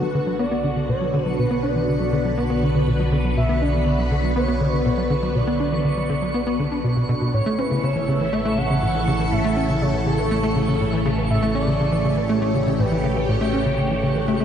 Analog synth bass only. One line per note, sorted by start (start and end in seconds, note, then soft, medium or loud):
0.02 0.07 F#3 medium
0.15 0.19 D3 loud
0.27 0.34 F#3 medium
0.39 0.47 B3 loud
0.52 0.63 B3 medium
0.64 0.72 D3 medium
0.76 0.84 D3 medium
0.89 0.93 B2 medium
1.01 1.06 F#3 medium
1.14 1.18 D3 loud
1.26 1.34 F#3 medium
1.39 1.46 B2 medium
1.51 1.62 B3 loud
1.63 1.75 D4 medium
1.75 1.83 E3 medium
1.88 1.99 D3 medium
2.00 2.05 F#3 medium
2.13 2.17 D3 loud
2.25 2.33 F#3 medium
2.38 2.45 B3 loud
2.50 2.61 B3 loud
2.63 2.70 D3 medium
2.75 2.82 D3 medium
2.87 2.92 B2 medium
2.99 3.04 F#3 medium
3.12 3.17 D3 loud
3.24 3.32 F#3 medium
3.37 3.44 B2 medium
3.49 3.61 B3 loud
3.62 3.73 D4 medium
3.74 3.82 E3 medium
3.86 3.98 D3 medium
3.99 4.03 F#3 medium
4.11 4.16 D3 loud
4.24 4.31 F#3 medium
4.36 4.44 B3 loud
4.48 4.60 B3 loud
4.61 4.68 D3 medium
4.73 4.81 D3 medium
4.86 4.90 B2 medium
4.98 5.02 F#3 medium
5.10 5.15 D3 loud
5.23 5.30 F#3 medium
5.35 5.43 B2 medium
5.47 5.59 B3 loud
5.60 5.71 D4 medium
5.72 5.80 E3 medium
5.85 5.96 D3 medium
5.97 6.02 F#3 medium
6.09 6.14 D3 loud
6.22 6.30 F#3 medium
6.34 6.42 B3 loud
6.47 6.58 B3 loud
6.59 6.67 D3 medium
6.72 6.79 D4 medium
6.84 6.95 B2 medium
6.96 7.04 B2 medium
7.09 7.13 B2 loud
7.21 7.33 B2 medium
7.34 7.41 A2 medium
7.46 7.57 A3 loud
7.59 7.70 C#4 medium
7.71 7.79 C#3 medium
7.83 7.95 C#3 medium
7.96 8.00 E3 medium
8.08 8.19 C#3 medium
8.21 8.28 E3 medium
8.33 8.40 A3 loud
8.45 8.57 A3 loud
8.58 8.65 C#3 medium
8.70 8.78 C#3 medium
8.83 8.87 A2 medium
8.95 8.99 E3 medium
9.07 9.12 C#3 loud
9.20 9.27 E3 medium
9.32 9.40 A2 medium
9.44 9.56 A3 loud
9.57 9.68 C#4 medium
9.69 9.77 C#3 medium
9.82 9.93 C#3 medium
9.94 9.98 E3 medium
10.06 10.18 C#3 medium
10.19 10.26 E3 medium
10.31 10.39 A3 loud
10.43 10.55 A3 loud
10.56 10.64 C#3 medium
10.68 10.76 C#3 medium
10.81 10.85 A2 medium
10.93 10.98 E3 medium
11.06 11.10 C#3 loud
11.18 11.25 E3 medium
11.30 11.38 A2 medium
11.43 11.54 A3 loud
11.55 11.66 C#4 medium
11.67 11.75 C#3 medium
11.80 11.91 C#3 medium
11.92 11.97 E3 medium
12.04 12.16 C#3 medium
12.17 12.25 E3 medium
12.29 12.37 A3 loud
12.42 12.53 A3 loud
12.54 12.62 C#3 medium
12.67 12.74 C#3 medium
12.79 12.84 A2 medium
12.91 12.96 E3 medium
13.04 13.08 C#3 loud
13.16 13.24 E3 medium
13.29 13.36 A2 medium
13.41 13.52 A3 loud
13.53 13.65 C#4 medium
13.66 13.73 C#3 medium
13.78 13.90 C#3 medium
13.91 13.95 E3 medium
14.03 14.14 C#3 medium
14.16 14.23 E3 medium
14.28 14.35 A3 loud
14.40 14.45 A3 loud